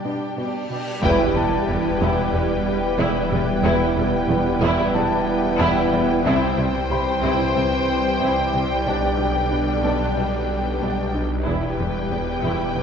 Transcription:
Already playing: G3 D4 G4 D5, reverse cymbal
0.04 B2 G3 D4 G4 G5
0.37 B2 G3 B3 D4 G4 G5
0.70 B2 G3 D4 G4 G5
1.02 E1 E2 E3 G3 B3 E4 G4 B4 G5, impact
1.36 E1 E2 G3 B3 A5
1.68 E1 E2 B3
2.00 E1 E2 E3 E4
2.33 E1 E2 G3 B3
2.98 E1 E2 E3 E4
3.31 E1 E2 G3 B3
3.64 E1 E2 E3 E4
3.96 E1 E2 G3 B3
4.29 E1 E2 B3
4.61 E1 E2 E4
4.94 E1 E2 G3 B3 A5
5.59 E1 E2 E3 E4
5.92 E1 E2 G3 B3
6.24 C2 C3 E3 G3 C4 E4 G4 C5 G5
6.57 C2 C3 G3
6.90 C2 C3 G3 C4 B5
7.22 C2 C3 E4
7.55 C2 C3 G3
8.20 C2 C3 E4
8.53 C2 C3 G3
8.85 B1 B2 D3 G3 B3 D4 B4 D5
9.18 B1 B2 G3 D4 G5
9.51 B1 B2 B3 D4
9.83 B1 B2 G3 D4 A4 A5
10.15 B1 B2 G3 D4
10.81 B1 B2 G3 D4
11.13 B1 B2 G3 D4
11.45 E1 E2 E3 G3 B3 E4 G4 B4 G5
11.78 E1 E2 G3 B3
12.10 E1 E2 B3
12.43 E1 E2 E3 E4
12.76 E1 E2 G3 B3

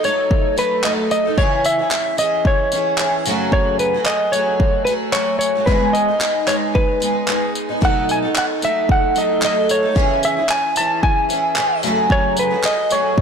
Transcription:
0.03 F#3 A3 D#4 A4 C#5, tambourine
0.31 kick
0.56 F#3 A3 D#4 A4 B4, tambourine
0.83 F#3 A3 D#4 A4 D#5, clap
1.11 D#5, tambourine
1.26 A3 D#4 A4
1.38 C#3 E3 C#4 E4 G#4 C#5, kick
1.65 E5, tambourine
1.79 C#4 E4 G#4
1.91 clap
2.17 E3 C#4 E4 G#4 D#5, tambourine
2.45 C#5, kick
2.72 E3 C#4 E4 G#4, tambourine
2.98 E3 C#4 E4 G#4, clap
3.26 F#2 C#3 F#3 A3 F#4 G#4, tambourine
3.52 C#5, kick
3.79 B4, tambourine
3.94 F#3 A3 F#4 G#4
4.06 D#5, clap
4.32 F#3 A3 F#4 G#4 C#5, tambourine
4.60 kick
4.85 F#3 A3 F#4 B4, tambourine
4.89 G#4
5.13 F#3 A3 F#4 G#4 C#5, clap
5.39 C#5, tambourine
5.55 F#3 A3 F#4 G#4
5.66 G#2 E3 G#3 B3 D#4 G#4 B4, kick
5.93 D#5, tambourine
6.08 G#3 B3 D#4 G#4
6.21 clap
6.47 G#3 B3 D#4 G#4 C#5, clap, tambourine
6.75 B4, kick
7.00 G#3 B3 D#4 G#4, tambourine
7.27 G#3 B3 D#4 G#4, clap
7.55 tambourine
7.69 G#3 B3 D#4 G#4
7.80 B2 F#3 A3 D#4 A4, kick
7.85 F#5
8.09 G#5, tambourine
8.22 A3 D#4 A4
8.36 F#5, clap
8.61 F#3 A3 D#4 A4 E5, tambourine
8.89 F#5, kick
9.15 F#3 A3 D#4 A4 D#5, tambourine
9.41 F#3 A3 D#4 A4 D#5, clap
9.69 C#5, tambourine
9.83 A3 D#4 A4
9.95 C#3 E3 C#4 E4 G#4, kick
10.23 E5, tambourine
10.37 C#4 E4 G#4
10.49 G#5, clap
10.76 E3 C#4 E4 G#4 A5, tambourine
11.03 G#5, kick
11.29 E3 C#4 E4 G#4, tambourine
11.56 E3 C#4 E4 G#4, clap
11.83 F#2 C#3 F#3 A3 F#4 G#4, tambourine
12.10 C#5, kick
12.37 B4, tambourine
12.51 F#3 A3 F#4 G#4
12.64 D#5, clap
12.89 F#3 A3 F#4 G#4 C#5, tambourine
13.18 kick

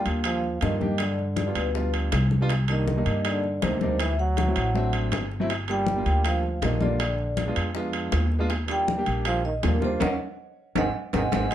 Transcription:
Already playing: G3 A#3 D4 F4
0.06 D#2, high bongo, high conga, high timbale
0.24 F3 F5, high bongo, high conga, high timbale
0.44 high conga
0.61 G2 D#3 G3 A#3 D4 F4 D#5, high bongo, low bongo, high conga, high timbale
0.80 G3 A#3 D4 G4, high bongo, high conga
0.98 D3 D5, high bongo, high conga, high timbale
1.19 high conga
1.36 high bongo, high conga, high timbale
1.45 G3 B3 D4 F4
1.55 D2 B2 B4, high bongo, high conga, high timbale
1.74 G3 B3 D4 F4, high bongo, high conga
1.93 high bongo, high conga, high timbale
2.12 C2, high bongo, low bongo, high conga, high timbale
2.31 high bongo, high conga
2.41 G3 B3 D4 F4
2.49 high bongo, high conga, high timbale
2.68 D#3 G3 A#3 D4 D#4 D#5, high bongo, high conga, high timbale
2.87 high bongo, high conga
2.95 G3 A#3 D4 D#4
3.06 G2, high bongo, high conga, high timbale
3.25 D3 D5, high bongo, high conga, high timbale
3.44 high conga
3.62 D2 C3 G3 A#3 D4 D#4 C5, high bongo, low bongo, high conga, high timbale
3.81 G3 A#3 D4 D#4, high bongo, high conga
3.99 E3 E5, high bongo, high conga, high timbale
4.19 F#3 F#5, high conga
4.37 high bongo, high conga, high timbale
4.47 F#3 A3 C4 E4
4.56 A1, high bongo, high conga, high timbale
4.74 F#3 A3 C4 D4, high bongo, high conga
4.93 high bongo, high conga, high timbale
5.12 G1, high bongo, low bongo, high conga, high timbale
5.31 high bongo
5.40 F#3 A3 C4 E4
5.49 high bongo, high conga, high timbale
5.68 G3 A#3 D4 F4 G5, high bongo, high conga, high timbale
5.87 high bongo, high conga
5.95 G3 A#3 D4 F4
6.06 D2, high bongo, high conga, high timbale
6.25 F3 F5, high bongo, high conga, high timbale
6.43 high conga
6.61 A#1 D#3 G3 A#3 D4 F4 D#5, high bongo, low bongo, high conga, high timbale, low timbale
6.80 D3 G3 A#3 D4 F4 D5, high bongo, high conga
6.99 high bongo, high conga, high timbale
7.19 high conga
7.37 high bongo, high conga, high timbale
7.46 G#3 B3 D4 F4
7.56 F2, high bongo, high conga, high timbale
7.75 G#3 B3 D4 F4, high bongo, high conga
7.93 high bongo, high conga, high timbale
8.12 D#2, high bongo, low bongo, high conga, high timbale, low timbale
8.32 high bongo
8.39 G#3 B3 D4 F4
8.50 high bongo, high conga, high timbale
8.67 G3 A#3 D4 F4, high bongo, high conga, high timbale
8.71 G5
8.88 high bongo, high conga
8.97 G3 A#3 D4 G4
9.06 A#1, high bongo, high conga, high timbale
9.25 F3 F5, high bongo, high conga, high timbale
9.45 D#3 D#5, high conga
9.62 D#2 A#2 G3 A#3 D4 F4 A#4, high bongo, low bongo, high conga, high timbale, low timbale
9.80 C3 G3 A#3 D4 F4, high bongo, high conga
9.85 C5
10.00 D#2 D#3 A#3 C#4 D#4 C#5 D#5 F#5, low bongo, high conga, high timbale
10.75 G#1 D#3 G#3 C4 D#4 D#5 F#5 G#5, low bongo, high conga, high timbale
11.13 G#1 D#3 G#3 C4 D#4 D#5 F#5 G#5, low bongo, high conga, high timbale
11.32 G#1 D#3 G#3 C4 D#4 D#5 F#5 G#5, low bongo, high conga, high timbale
11.50 G#3 A#3 D#4 F4, high conga, high timbale

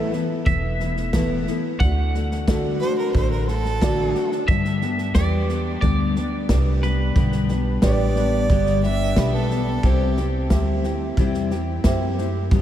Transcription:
Already playing: A2 E3 A3 B3 E4 A4 B4
0.12 A3 B3 E4, snare
0.46 E1 E3 A3 B3 E4 E5, kick, snare
0.80 A3 B3 E4, snare
0.96 snare
1.13 A2 E3 A3 B3 E4 A4 B4, kick, snare, hi-hat pedal
1.47 A3 B3 E4, snare
1.80 D2 D3 A3 D4 F#4 F#5, kick, snare
2.14 A3 D4 F#4, snare
2.31 snare
2.48 D3 A3 D4 F#4 A4 D5, kick, snare, hi-hat pedal
2.80 A3 D4 F#4 C5, snare
2.98 A#4
3.14 A1 D3 A3 D4 F#4 C5, kick, snare
3.31 A#4
3.48 A3 D4 F#4 A4, snare
3.65 snare
3.82 D3 A3 D4 F#4 A4 D5, kick, snare, hi-hat pedal
4.14 A3 D4 F#4, snare
4.32 snare
4.48 G2 D3 G3 B3 D4 G4 E5, kick, snare
4.65 snare
4.81 G3 B3 D4 G4, snare
4.98 snare
5.15 E2 G3 B3 G4 B4 D5, kick, snare, hi-hat pedal
5.48 G3 B3 D4 G4, snare
5.81 D2 G2 D3 G3 B3 D4 G4 D5, kick, snare
6.16 G3 B3 D4 G4, snare
6.49 C2 G3 B3 D4 G4 B4 D5, kick, snare, hi-hat pedal
6.82 G3 B3 D4 G4 B4, snare
7.15 B1 G2 D3 G3 B3 D4 G4, kick, snare
7.32 snare
7.48 G3 B3 D4 G4, snare
7.82 A1 G3 B3 D4 G4 B4 D5, kick, snare, hi-hat pedal
8.16 G3 B3 D4 G4, snare
8.49 G1 G2 D3 G3 B3 D4 G4, kick, snare
8.66 snare
8.83 G3 B3 D4 G4 E5, snare
9.16 B1 G3 B3 D4 G4 B4 E5, kick, snare, hi-hat pedal
9.34 A4
9.50 G3 B3 D4 G4, snare
9.83 C2 C3 G3 C4 E4 G4, kick, snare
10.17 C4 E4 G4, snare
10.50 D2 G3 C4 E4 G4 C5 E5, kick, snare, hi-hat pedal
10.83 C4 E4 G4, snare
11.17 E2 C3 G3 C4 E4 G4, kick, snare
11.34 snare
11.51 C4 E4 G4, snare
11.84 F#2 C4 E4 G4 C5 E5, kick, snare, hi-hat pedal
12.18 C4 E4 G4, snare
12.51 G2 D3 G3 B3 D4 G4, kick, snare

